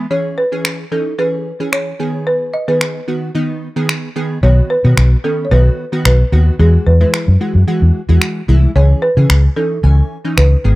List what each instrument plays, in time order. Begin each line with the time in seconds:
0.10 synth stab E3 C#4 G#4, marimba C#5
0.38 marimba B4
0.52 synth stab E3 C#4 G#4
0.65 finger snap
0.91 synth stab E3 C#4 D#4, marimba A4
1.18 synth stab E3 C#4 G#4, marimba B4
1.60 synth stab E3 C#4 G#4
1.72 marimba C#5, finger snap
1.99 synth stab D#3 B3 G#4
2.27 marimba B4
2.54 marimba D#5
2.68 synth stab D#3 B3 G#4, marimba B4
2.81 finger snap
3.08 synth stab D#3 B3 F#4
3.35 synth stab D#3 B3 D#4
3.76 synth stab D#3 B3 G#4
3.89 finger snap
4.16 synth stab D#3 B3 G#4
4.43 fingered electric bass B1, synth stab D#3 B3 F#4, marimba C#5
4.70 marimba B4
4.84 fingered electric bass B2, synth stab D#3 B3 F#4
4.97 fingered electric bass B1, finger snap
5.24 synth stab D#3 B3 C#4, marimba A4
5.45 marimba C#5
5.51 fingered electric bass B1, synth stab D#3 B3 F#4, marimba B4
5.92 synth stab D#3 B3 F#4
6.05 fingered electric bass B1, marimba B4, finger snap
6.32 fingered electric bass D#2, synth stab D#3 B3 F#4
6.59 fingered electric bass E2, synth stab E3 G#3 F#4, marimba G#4
6.87 fingered electric bass E2, marimba B4
7.00 synth stab E3 G#3 E4, marimba B4
7.14 finger snap
7.28 fingered electric bass F#2
7.40 synth stab E3 G#3 F#4
7.55 fingered electric bass F#2
7.67 synth stab E3 G#3 F#4
7.82 fingered electric bass E2
8.09 fingered electric bass E2, synth stab E3 G#3 F#4
8.22 finger snap
8.48 fingered electric bass C2, synth stab E3 G#3 E4
8.76 fingered electric bass C#2, synth stab E3 C#4 G#4, marimba C#5
9.02 marimba B4
9.17 fingered electric bass C#3, synth stab E3 C#4 G#4
9.30 fingered electric bass C#2, finger snap
9.56 synth stab E3 C#4 D#4, marimba A4
9.83 fingered electric bass C#2, synth stab E3 C#4 G#5
10.25 synth stab E3 C#4 D#4
10.37 fingered electric bass C#2, marimba B4, finger snap
10.64 fingered electric bass G#1, synth stab D#3 B3 G#4